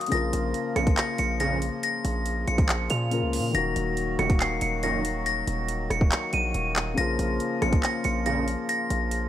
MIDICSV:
0, 0, Header, 1, 7, 480
1, 0, Start_track
1, 0, Key_signature, -5, "minor"
1, 0, Tempo, 428571
1, 132, Time_signature, 4, 2, 24, 8
1, 10401, End_track
2, 0, Start_track
2, 0, Title_t, "Synth bell"
2, 0, Program_c, 0, 98
2, 131, Note_on_c, 0, 94, 95
2, 809, Note_off_c, 0, 94, 0
2, 852, Note_on_c, 0, 97, 81
2, 1051, Note_off_c, 0, 97, 0
2, 1092, Note_on_c, 0, 94, 77
2, 1291, Note_off_c, 0, 94, 0
2, 1333, Note_on_c, 0, 97, 84
2, 1532, Note_off_c, 0, 97, 0
2, 1571, Note_on_c, 0, 94, 83
2, 1771, Note_off_c, 0, 94, 0
2, 2055, Note_on_c, 0, 94, 99
2, 2731, Note_off_c, 0, 94, 0
2, 2774, Note_on_c, 0, 97, 77
2, 3224, Note_off_c, 0, 97, 0
2, 3252, Note_on_c, 0, 101, 88
2, 3929, Note_off_c, 0, 101, 0
2, 3974, Note_on_c, 0, 94, 110
2, 4650, Note_off_c, 0, 94, 0
2, 4694, Note_on_c, 0, 97, 82
2, 4893, Note_off_c, 0, 97, 0
2, 4933, Note_on_c, 0, 96, 77
2, 5132, Note_off_c, 0, 96, 0
2, 5174, Note_on_c, 0, 97, 80
2, 5373, Note_off_c, 0, 97, 0
2, 5415, Note_on_c, 0, 94, 85
2, 5613, Note_off_c, 0, 94, 0
2, 5894, Note_on_c, 0, 94, 105
2, 6570, Note_off_c, 0, 94, 0
2, 6618, Note_on_c, 0, 97, 79
2, 7066, Note_off_c, 0, 97, 0
2, 7097, Note_on_c, 0, 99, 92
2, 7772, Note_off_c, 0, 99, 0
2, 7814, Note_on_c, 0, 94, 96
2, 8490, Note_off_c, 0, 94, 0
2, 8534, Note_on_c, 0, 97, 78
2, 8732, Note_off_c, 0, 97, 0
2, 8772, Note_on_c, 0, 94, 76
2, 8971, Note_off_c, 0, 94, 0
2, 9013, Note_on_c, 0, 97, 80
2, 9212, Note_off_c, 0, 97, 0
2, 9252, Note_on_c, 0, 94, 85
2, 9451, Note_off_c, 0, 94, 0
2, 9734, Note_on_c, 0, 94, 98
2, 10401, Note_off_c, 0, 94, 0
2, 10401, End_track
3, 0, Start_track
3, 0, Title_t, "Grand piano"
3, 0, Program_c, 1, 0
3, 88, Note_on_c, 1, 49, 64
3, 112, Note_on_c, 1, 58, 60
3, 136, Note_on_c, 1, 65, 68
3, 160, Note_on_c, 1, 70, 76
3, 368, Control_c, 1, 64, 127
3, 3425, Note_off_c, 1, 49, 0
3, 3437, Note_off_c, 1, 58, 0
3, 3449, Note_off_c, 1, 65, 0
3, 3461, Note_off_c, 1, 70, 0
3, 3477, Note_on_c, 1, 49, 53
3, 3489, Note_on_c, 1, 58, 48
3, 3501, Note_on_c, 1, 65, 50
3, 3513, Note_on_c, 1, 70, 57
3, 3929, Note_on_c, 1, 51, 67
3, 3937, Note_off_c, 1, 58, 0
3, 3953, Note_on_c, 1, 58, 56
3, 3965, Note_off_c, 1, 49, 0
3, 3976, Note_off_c, 1, 65, 0
3, 3977, Note_on_c, 1, 66, 60
3, 3982, Note_off_c, 1, 70, 0
3, 3987, Control_c, 1, 64, 0
3, 4002, Note_on_c, 1, 70, 80
3, 4157, Control_c, 1, 64, 127
3, 7746, Note_off_c, 1, 51, 0
3, 7758, Note_off_c, 1, 58, 0
3, 7769, Note_on_c, 1, 49, 64
3, 7770, Note_off_c, 1, 66, 0
3, 7782, Note_off_c, 1, 70, 0
3, 7794, Note_on_c, 1, 58, 61
3, 7817, Note_on_c, 1, 65, 67
3, 7824, Control_c, 1, 64, 0
3, 7842, Note_on_c, 1, 70, 80
3, 8008, Control_c, 1, 64, 127
3, 10401, Note_off_c, 1, 49, 0
3, 10401, Note_off_c, 1, 58, 0
3, 10401, Note_off_c, 1, 65, 0
3, 10401, Note_off_c, 1, 70, 0
3, 10401, End_track
4, 0, Start_track
4, 0, Title_t, "Accordion"
4, 0, Program_c, 2, 21
4, 131, Note_on_c, 2, 53, 77
4, 132, Note_on_c, 2, 49, 80
4, 132, Note_on_c, 2, 58, 74
4, 132, Note_on_c, 2, 65, 90
4, 3933, Note_off_c, 2, 53, 0
4, 3934, Note_off_c, 2, 49, 0
4, 3934, Note_off_c, 2, 65, 0
4, 3973, Note_on_c, 2, 51, 83
4, 3973, Note_on_c, 2, 54, 77
4, 3974, Note_on_c, 2, 66, 94
4, 7774, Note_off_c, 2, 51, 0
4, 7774, Note_off_c, 2, 54, 0
4, 7775, Note_off_c, 2, 66, 0
4, 7813, Note_on_c, 2, 49, 80
4, 7813, Note_on_c, 2, 53, 75
4, 7813, Note_on_c, 2, 65, 91
4, 10401, Note_off_c, 2, 49, 0
4, 10401, Note_off_c, 2, 53, 0
4, 10401, Note_off_c, 2, 58, 0
4, 10401, Note_off_c, 2, 65, 0
4, 10401, End_track
5, 0, Start_track
5, 0, Title_t, "Analog polysynth"
5, 0, Program_c, 3, 90
5, 852, Note_on_c, 3, 46, 83
5, 852, Note_on_c, 3, 49, 95
5, 853, Note_on_c, 3, 41, 82
5, 954, Note_off_c, 3, 41, 0
5, 954, Note_off_c, 3, 46, 0
5, 954, Note_off_c, 3, 49, 0
5, 1572, Note_on_c, 3, 41, 100
5, 1572, Note_on_c, 3, 46, 99
5, 1572, Note_on_c, 3, 49, 117
5, 1776, Note_off_c, 3, 41, 0
5, 1776, Note_off_c, 3, 46, 0
5, 1776, Note_off_c, 3, 49, 0
5, 4692, Note_on_c, 3, 42, 85
5, 4692, Note_on_c, 3, 46, 86
5, 4692, Note_on_c, 3, 51, 97
5, 4794, Note_off_c, 3, 42, 0
5, 4794, Note_off_c, 3, 46, 0
5, 4794, Note_off_c, 3, 51, 0
5, 5413, Note_on_c, 3, 42, 104
5, 5413, Note_on_c, 3, 46, 96
5, 5413, Note_on_c, 3, 51, 104
5, 5617, Note_off_c, 3, 42, 0
5, 5617, Note_off_c, 3, 46, 0
5, 5617, Note_off_c, 3, 51, 0
5, 8533, Note_on_c, 3, 41, 81
5, 8533, Note_on_c, 3, 46, 84
5, 8533, Note_on_c, 3, 49, 93
5, 8635, Note_off_c, 3, 41, 0
5, 8635, Note_off_c, 3, 46, 0
5, 8635, Note_off_c, 3, 49, 0
5, 9253, Note_on_c, 3, 41, 101
5, 9253, Note_on_c, 3, 46, 102
5, 9253, Note_on_c, 3, 49, 111
5, 9457, Note_off_c, 3, 41, 0
5, 9457, Note_off_c, 3, 46, 0
5, 9457, Note_off_c, 3, 49, 0
5, 10401, End_track
6, 0, Start_track
6, 0, Title_t, "808-style bass"
6, 0, Program_c, 4, 38
6, 132, Note_on_c, 4, 34, 115
6, 363, Note_off_c, 4, 34, 0
6, 372, Note_on_c, 4, 34, 98
6, 602, Note_off_c, 4, 34, 0
6, 851, Note_on_c, 4, 34, 107
6, 1082, Note_off_c, 4, 34, 0
6, 1332, Note_on_c, 4, 34, 101
6, 1908, Note_off_c, 4, 34, 0
6, 2292, Note_on_c, 4, 34, 100
6, 2753, Note_off_c, 4, 34, 0
6, 2773, Note_on_c, 4, 34, 105
6, 3233, Note_off_c, 4, 34, 0
6, 3253, Note_on_c, 4, 46, 106
6, 3612, Note_on_c, 4, 37, 101
6, 3629, Note_off_c, 4, 46, 0
6, 3792, Note_on_c, 4, 46, 101
6, 3809, Note_off_c, 4, 37, 0
6, 3963, Note_off_c, 4, 46, 0
6, 3972, Note_on_c, 4, 27, 112
6, 4203, Note_off_c, 4, 27, 0
6, 4212, Note_on_c, 4, 27, 100
6, 4673, Note_off_c, 4, 27, 0
6, 4692, Note_on_c, 4, 27, 109
6, 5153, Note_off_c, 4, 27, 0
6, 5173, Note_on_c, 4, 27, 101
6, 6094, Note_off_c, 4, 27, 0
6, 6132, Note_on_c, 4, 27, 99
6, 6593, Note_off_c, 4, 27, 0
6, 6612, Note_on_c, 4, 27, 107
6, 6843, Note_off_c, 4, 27, 0
6, 7093, Note_on_c, 4, 34, 100
6, 7323, Note_off_c, 4, 34, 0
6, 7333, Note_on_c, 4, 27, 109
6, 7794, Note_off_c, 4, 27, 0
6, 7814, Note_on_c, 4, 34, 109
6, 8044, Note_off_c, 4, 34, 0
6, 8053, Note_on_c, 4, 34, 99
6, 8283, Note_off_c, 4, 34, 0
6, 8534, Note_on_c, 4, 34, 107
6, 8763, Note_off_c, 4, 34, 0
6, 9014, Note_on_c, 4, 34, 106
6, 9589, Note_off_c, 4, 34, 0
6, 9973, Note_on_c, 4, 34, 101
6, 10401, Note_off_c, 4, 34, 0
6, 10401, End_track
7, 0, Start_track
7, 0, Title_t, "Drums"
7, 12, Note_on_c, 9, 42, 62
7, 72, Note_off_c, 9, 42, 0
7, 72, Note_on_c, 9, 42, 60
7, 130, Note_off_c, 9, 42, 0
7, 130, Note_on_c, 9, 42, 82
7, 242, Note_off_c, 9, 42, 0
7, 371, Note_on_c, 9, 42, 93
7, 483, Note_off_c, 9, 42, 0
7, 607, Note_on_c, 9, 42, 72
7, 719, Note_off_c, 9, 42, 0
7, 852, Note_on_c, 9, 37, 64
7, 852, Note_on_c, 9, 42, 58
7, 964, Note_off_c, 9, 37, 0
7, 964, Note_off_c, 9, 42, 0
7, 972, Note_on_c, 9, 36, 95
7, 972, Note_on_c, 9, 42, 60
7, 1084, Note_off_c, 9, 36, 0
7, 1084, Note_off_c, 9, 42, 0
7, 1092, Note_on_c, 9, 39, 124
7, 1095, Note_on_c, 9, 42, 86
7, 1204, Note_off_c, 9, 39, 0
7, 1207, Note_off_c, 9, 42, 0
7, 1325, Note_on_c, 9, 42, 80
7, 1437, Note_off_c, 9, 42, 0
7, 1568, Note_on_c, 9, 42, 74
7, 1680, Note_off_c, 9, 42, 0
7, 1812, Note_on_c, 9, 42, 81
7, 1924, Note_off_c, 9, 42, 0
7, 2051, Note_on_c, 9, 42, 81
7, 2163, Note_off_c, 9, 42, 0
7, 2292, Note_on_c, 9, 42, 95
7, 2404, Note_off_c, 9, 42, 0
7, 2527, Note_on_c, 9, 42, 74
7, 2639, Note_off_c, 9, 42, 0
7, 2772, Note_on_c, 9, 42, 60
7, 2884, Note_off_c, 9, 42, 0
7, 2892, Note_on_c, 9, 36, 92
7, 2892, Note_on_c, 9, 42, 58
7, 3004, Note_off_c, 9, 36, 0
7, 3004, Note_off_c, 9, 42, 0
7, 3012, Note_on_c, 9, 39, 122
7, 3016, Note_on_c, 9, 42, 86
7, 3124, Note_off_c, 9, 39, 0
7, 3128, Note_off_c, 9, 42, 0
7, 3245, Note_on_c, 9, 42, 82
7, 3357, Note_off_c, 9, 42, 0
7, 3488, Note_on_c, 9, 42, 77
7, 3600, Note_off_c, 9, 42, 0
7, 3732, Note_on_c, 9, 46, 83
7, 3844, Note_off_c, 9, 46, 0
7, 3971, Note_on_c, 9, 42, 85
7, 4083, Note_off_c, 9, 42, 0
7, 4212, Note_on_c, 9, 42, 94
7, 4324, Note_off_c, 9, 42, 0
7, 4446, Note_on_c, 9, 42, 72
7, 4558, Note_off_c, 9, 42, 0
7, 4692, Note_on_c, 9, 37, 65
7, 4692, Note_on_c, 9, 42, 58
7, 4804, Note_off_c, 9, 37, 0
7, 4804, Note_off_c, 9, 42, 0
7, 4812, Note_on_c, 9, 36, 96
7, 4812, Note_on_c, 9, 42, 60
7, 4924, Note_off_c, 9, 36, 0
7, 4924, Note_off_c, 9, 42, 0
7, 4932, Note_on_c, 9, 39, 126
7, 4936, Note_on_c, 9, 42, 86
7, 5044, Note_off_c, 9, 39, 0
7, 5048, Note_off_c, 9, 42, 0
7, 5165, Note_on_c, 9, 42, 85
7, 5277, Note_off_c, 9, 42, 0
7, 5408, Note_on_c, 9, 42, 80
7, 5520, Note_off_c, 9, 42, 0
7, 5653, Note_on_c, 9, 42, 85
7, 5765, Note_off_c, 9, 42, 0
7, 5891, Note_on_c, 9, 42, 82
7, 6003, Note_off_c, 9, 42, 0
7, 6131, Note_on_c, 9, 42, 94
7, 6243, Note_off_c, 9, 42, 0
7, 6367, Note_on_c, 9, 42, 74
7, 6479, Note_off_c, 9, 42, 0
7, 6612, Note_on_c, 9, 37, 65
7, 6615, Note_on_c, 9, 42, 69
7, 6724, Note_off_c, 9, 37, 0
7, 6727, Note_off_c, 9, 42, 0
7, 6732, Note_on_c, 9, 36, 92
7, 6844, Note_off_c, 9, 36, 0
7, 6853, Note_on_c, 9, 39, 122
7, 6856, Note_on_c, 9, 42, 86
7, 6965, Note_off_c, 9, 39, 0
7, 6968, Note_off_c, 9, 42, 0
7, 7087, Note_on_c, 9, 42, 82
7, 7199, Note_off_c, 9, 42, 0
7, 7329, Note_on_c, 9, 42, 78
7, 7441, Note_off_c, 9, 42, 0
7, 7573, Note_on_c, 9, 39, 104
7, 7574, Note_on_c, 9, 42, 84
7, 7685, Note_off_c, 9, 39, 0
7, 7686, Note_off_c, 9, 42, 0
7, 7812, Note_on_c, 9, 42, 84
7, 7924, Note_off_c, 9, 42, 0
7, 8053, Note_on_c, 9, 42, 94
7, 8165, Note_off_c, 9, 42, 0
7, 8289, Note_on_c, 9, 42, 74
7, 8401, Note_off_c, 9, 42, 0
7, 8533, Note_on_c, 9, 37, 67
7, 8533, Note_on_c, 9, 42, 59
7, 8645, Note_off_c, 9, 37, 0
7, 8645, Note_off_c, 9, 42, 0
7, 8653, Note_on_c, 9, 36, 90
7, 8653, Note_on_c, 9, 42, 59
7, 8765, Note_off_c, 9, 36, 0
7, 8765, Note_off_c, 9, 42, 0
7, 8773, Note_on_c, 9, 39, 124
7, 8777, Note_on_c, 9, 42, 86
7, 8885, Note_off_c, 9, 39, 0
7, 8889, Note_off_c, 9, 42, 0
7, 9007, Note_on_c, 9, 42, 81
7, 9119, Note_off_c, 9, 42, 0
7, 9249, Note_on_c, 9, 42, 79
7, 9361, Note_off_c, 9, 42, 0
7, 9494, Note_on_c, 9, 42, 82
7, 9606, Note_off_c, 9, 42, 0
7, 9732, Note_on_c, 9, 42, 82
7, 9844, Note_off_c, 9, 42, 0
7, 9972, Note_on_c, 9, 42, 92
7, 10084, Note_off_c, 9, 42, 0
7, 10207, Note_on_c, 9, 42, 74
7, 10319, Note_off_c, 9, 42, 0
7, 10401, End_track
0, 0, End_of_file